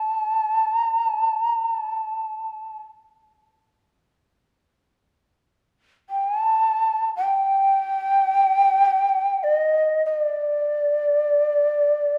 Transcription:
0, 0, Header, 1, 3, 480
1, 0, Start_track
1, 0, Tempo, 500000
1, 11695, End_track
2, 0, Start_track
2, 0, Title_t, "Shakuhachi"
2, 0, Program_c, 0, 77
2, 0, Note_on_c, 0, 81, 64
2, 726, Note_off_c, 0, 81, 0
2, 726, Note_on_c, 0, 82, 64
2, 1014, Note_off_c, 0, 82, 0
2, 1014, Note_on_c, 0, 81, 64
2, 1330, Note_off_c, 0, 81, 0
2, 1330, Note_on_c, 0, 82, 64
2, 1628, Note_off_c, 0, 82, 0
2, 1628, Note_on_c, 0, 81, 64
2, 2696, Note_off_c, 0, 81, 0
2, 5852, Note_on_c, 0, 79, 69
2, 6025, Note_off_c, 0, 79, 0
2, 6025, Note_on_c, 0, 80, 69
2, 6140, Note_off_c, 0, 80, 0
2, 6140, Note_on_c, 0, 81, 69
2, 6819, Note_off_c, 0, 81, 0
2, 6877, Note_on_c, 0, 79, 80
2, 9056, Note_on_c, 0, 75, 62
2, 9070, Note_off_c, 0, 79, 0
2, 9646, Note_off_c, 0, 75, 0
2, 9652, Note_on_c, 0, 75, 58
2, 9786, Note_off_c, 0, 75, 0
2, 9786, Note_on_c, 0, 74, 58
2, 11695, Note_off_c, 0, 74, 0
2, 11695, End_track
3, 0, Start_track
3, 0, Title_t, "Koto"
3, 0, Program_c, 1, 107
3, 0, Note_on_c, 1, 55, 44
3, 0, Note_on_c, 1, 62, 34
3, 0, Note_on_c, 1, 67, 34
3, 0, Note_on_c, 1, 69, 39
3, 0, Note_on_c, 1, 74, 35
3, 430, Note_off_c, 1, 62, 0
3, 706, Note_off_c, 1, 55, 0
3, 775, Note_off_c, 1, 67, 0
3, 1120, Note_off_c, 1, 69, 0
3, 1464, Note_off_c, 1, 74, 0
3, 11695, End_track
0, 0, End_of_file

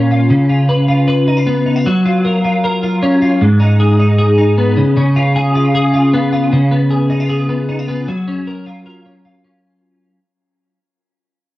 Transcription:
0, 0, Header, 1, 2, 480
1, 0, Start_track
1, 0, Key_signature, 6, "major"
1, 0, Tempo, 389610
1, 370, Time_signature, 4, 2, 24, 8
1, 14258, End_track
2, 0, Start_track
2, 0, Title_t, "Clean electric guitar"
2, 0, Program_c, 0, 27
2, 0, Note_on_c, 0, 46, 86
2, 0, Note_on_c, 0, 61, 64
2, 0, Note_on_c, 0, 65, 60
2, 0, Note_on_c, 0, 70, 79
2, 134, Note_off_c, 0, 65, 0
2, 139, Note_on_c, 0, 65, 60
2, 372, Note_on_c, 0, 49, 83
2, 373, Note_off_c, 0, 46, 0
2, 423, Note_off_c, 0, 70, 0
2, 606, Note_off_c, 0, 65, 0
2, 611, Note_on_c, 0, 65, 61
2, 851, Note_on_c, 0, 71, 72
2, 888, Note_off_c, 0, 61, 0
2, 1084, Note_off_c, 0, 65, 0
2, 1089, Note_on_c, 0, 65, 70
2, 1314, Note_off_c, 0, 71, 0
2, 1329, Note_on_c, 0, 71, 75
2, 1569, Note_off_c, 0, 65, 0
2, 1574, Note_on_c, 0, 63, 64
2, 1687, Note_off_c, 0, 63, 0
2, 1687, Note_on_c, 0, 65, 55
2, 1808, Note_on_c, 0, 59, 70
2, 2042, Note_off_c, 0, 65, 0
2, 2047, Note_on_c, 0, 63, 58
2, 2168, Note_off_c, 0, 63, 0
2, 2168, Note_on_c, 0, 65, 62
2, 2285, Note_off_c, 0, 49, 0
2, 2296, Note_on_c, 0, 54, 90
2, 2333, Note_off_c, 0, 59, 0
2, 2333, Note_off_c, 0, 71, 0
2, 2334, Note_off_c, 0, 65, 0
2, 2533, Note_on_c, 0, 65, 68
2, 2771, Note_on_c, 0, 70, 70
2, 2998, Note_off_c, 0, 65, 0
2, 3013, Note_on_c, 0, 65, 68
2, 3240, Note_off_c, 0, 70, 0
2, 3255, Note_on_c, 0, 70, 79
2, 3473, Note_off_c, 0, 65, 0
2, 3488, Note_on_c, 0, 65, 58
2, 3727, Note_on_c, 0, 61, 72
2, 3950, Note_off_c, 0, 65, 0
2, 3965, Note_on_c, 0, 65, 66
2, 4203, Note_on_c, 0, 44, 89
2, 4204, Note_off_c, 0, 54, 0
2, 4249, Note_off_c, 0, 65, 0
2, 4250, Note_off_c, 0, 61, 0
2, 4253, Note_off_c, 0, 70, 0
2, 4432, Note_on_c, 0, 63, 68
2, 4680, Note_on_c, 0, 68, 77
2, 4907, Note_off_c, 0, 63, 0
2, 4922, Note_on_c, 0, 63, 67
2, 5150, Note_off_c, 0, 68, 0
2, 5155, Note_on_c, 0, 68, 78
2, 5380, Note_off_c, 0, 63, 0
2, 5395, Note_on_c, 0, 63, 68
2, 5640, Note_on_c, 0, 59, 66
2, 5874, Note_on_c, 0, 49, 79
2, 5921, Note_off_c, 0, 63, 0
2, 5923, Note_off_c, 0, 44, 0
2, 6104, Note_off_c, 0, 49, 0
2, 6118, Note_on_c, 0, 49, 89
2, 6155, Note_off_c, 0, 59, 0
2, 6360, Note_on_c, 0, 65, 65
2, 6596, Note_off_c, 0, 68, 0
2, 6601, Note_on_c, 0, 68, 74
2, 6835, Note_off_c, 0, 65, 0
2, 6840, Note_on_c, 0, 65, 68
2, 7077, Note_off_c, 0, 68, 0
2, 7082, Note_on_c, 0, 68, 81
2, 7309, Note_off_c, 0, 65, 0
2, 7314, Note_on_c, 0, 65, 60
2, 7558, Note_on_c, 0, 59, 65
2, 7788, Note_off_c, 0, 65, 0
2, 7793, Note_on_c, 0, 65, 62
2, 8024, Note_off_c, 0, 49, 0
2, 8039, Note_on_c, 0, 49, 76
2, 8081, Note_off_c, 0, 59, 0
2, 8083, Note_off_c, 0, 68, 0
2, 8269, Note_on_c, 0, 59, 53
2, 8306, Note_off_c, 0, 65, 0
2, 8506, Note_on_c, 0, 68, 60
2, 8745, Note_on_c, 0, 63, 60
2, 8870, Note_off_c, 0, 63, 0
2, 8870, Note_on_c, 0, 65, 51
2, 8972, Note_off_c, 0, 68, 0
2, 8987, Note_on_c, 0, 68, 63
2, 9211, Note_off_c, 0, 59, 0
2, 9226, Note_on_c, 0, 59, 53
2, 9466, Note_off_c, 0, 65, 0
2, 9471, Note_on_c, 0, 63, 55
2, 9597, Note_off_c, 0, 63, 0
2, 9597, Note_on_c, 0, 65, 52
2, 9694, Note_off_c, 0, 59, 0
2, 9709, Note_on_c, 0, 59, 51
2, 9956, Note_off_c, 0, 49, 0
2, 9958, Note_on_c, 0, 54, 76
2, 9998, Note_off_c, 0, 59, 0
2, 9998, Note_off_c, 0, 68, 0
2, 10002, Note_off_c, 0, 65, 0
2, 10197, Note_on_c, 0, 61, 55
2, 10438, Note_on_c, 0, 70, 62
2, 10674, Note_on_c, 0, 65, 55
2, 10910, Note_off_c, 0, 70, 0
2, 10915, Note_on_c, 0, 70, 59
2, 11153, Note_off_c, 0, 61, 0
2, 11158, Note_on_c, 0, 61, 48
2, 11392, Note_off_c, 0, 65, 0
2, 11397, Note_on_c, 0, 65, 52
2, 11632, Note_off_c, 0, 61, 0
2, 11637, Note_on_c, 0, 61, 46
2, 12542, Note_off_c, 0, 54, 0
2, 12542, Note_off_c, 0, 61, 0
2, 12542, Note_off_c, 0, 65, 0
2, 12542, Note_off_c, 0, 70, 0
2, 14258, End_track
0, 0, End_of_file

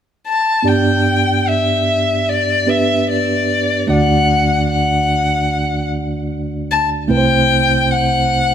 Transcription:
0, 0, Header, 1, 3, 480
1, 0, Start_track
1, 0, Key_signature, 1, "major"
1, 0, Tempo, 806452
1, 386, Time_signature, 4, 2, 24, 8
1, 5085, End_track
2, 0, Start_track
2, 0, Title_t, "Violin"
2, 0, Program_c, 0, 40
2, 164, Note_on_c, 0, 81, 65
2, 401, Note_on_c, 0, 79, 62
2, 410, Note_off_c, 0, 81, 0
2, 879, Note_on_c, 0, 76, 54
2, 888, Note_off_c, 0, 79, 0
2, 1364, Note_on_c, 0, 74, 57
2, 1373, Note_off_c, 0, 76, 0
2, 1606, Note_on_c, 0, 76, 62
2, 1615, Note_off_c, 0, 74, 0
2, 1840, Note_off_c, 0, 76, 0
2, 1853, Note_on_c, 0, 74, 54
2, 2300, Note_off_c, 0, 74, 0
2, 2328, Note_on_c, 0, 78, 62
2, 2777, Note_off_c, 0, 78, 0
2, 2810, Note_on_c, 0, 78, 54
2, 3498, Note_off_c, 0, 78, 0
2, 3996, Note_on_c, 0, 81, 71
2, 4102, Note_off_c, 0, 81, 0
2, 4233, Note_on_c, 0, 79, 74
2, 4707, Note_on_c, 0, 78, 67
2, 4716, Note_off_c, 0, 79, 0
2, 5085, Note_off_c, 0, 78, 0
2, 5085, End_track
3, 0, Start_track
3, 0, Title_t, "Tine electric piano"
3, 0, Program_c, 1, 4
3, 372, Note_on_c, 1, 59, 39
3, 378, Note_on_c, 1, 62, 35
3, 380, Note_on_c, 1, 43, 37
3, 383, Note_on_c, 1, 67, 38
3, 389, Note_on_c, 1, 74, 39
3, 492, Control_c, 1, 64, 127
3, 1564, Note_off_c, 1, 59, 0
3, 1567, Note_off_c, 1, 62, 0
3, 1570, Note_off_c, 1, 67, 0
3, 1573, Note_off_c, 1, 74, 0
3, 1587, Note_on_c, 1, 59, 30
3, 1591, Note_on_c, 1, 67, 30
3, 1592, Note_on_c, 1, 62, 28
3, 1596, Note_on_c, 1, 71, 35
3, 2288, Note_off_c, 1, 43, 0
3, 2301, Note_off_c, 1, 62, 0
3, 2303, Note_on_c, 1, 57, 41
3, 2308, Note_on_c, 1, 62, 37
3, 2310, Note_off_c, 1, 59, 0
3, 2312, Note_off_c, 1, 67, 0
3, 2313, Note_on_c, 1, 38, 41
3, 2314, Note_on_c, 1, 50, 41
3, 2315, Note_off_c, 1, 71, 0
3, 2317, Note_on_c, 1, 66, 36
3, 2320, Note_on_c, 1, 74, 49
3, 2322, Control_c, 1, 64, 0
3, 2444, Control_c, 1, 64, 127
3, 4199, Note_off_c, 1, 57, 0
3, 4202, Note_off_c, 1, 62, 0
3, 4204, Note_off_c, 1, 38, 0
3, 4204, Note_off_c, 1, 50, 0
3, 4206, Note_off_c, 1, 66, 0
3, 4208, Note_off_c, 1, 74, 0
3, 4214, Note_on_c, 1, 57, 46
3, 4220, Note_on_c, 1, 60, 37
3, 4223, Note_on_c, 1, 48, 39
3, 4224, Note_on_c, 1, 36, 43
3, 4224, Note_on_c, 1, 64, 37
3, 4230, Note_on_c, 1, 71, 37
3, 4235, Control_c, 1, 64, 0
3, 4267, Note_off_c, 1, 71, 0
3, 4269, Note_on_c, 1, 72, 47
3, 4351, Control_c, 1, 64, 127
3, 5085, Note_off_c, 1, 36, 0
3, 5085, Note_off_c, 1, 48, 0
3, 5085, Note_off_c, 1, 57, 0
3, 5085, Note_off_c, 1, 60, 0
3, 5085, Note_off_c, 1, 64, 0
3, 5085, Note_off_c, 1, 72, 0
3, 5085, End_track
0, 0, End_of_file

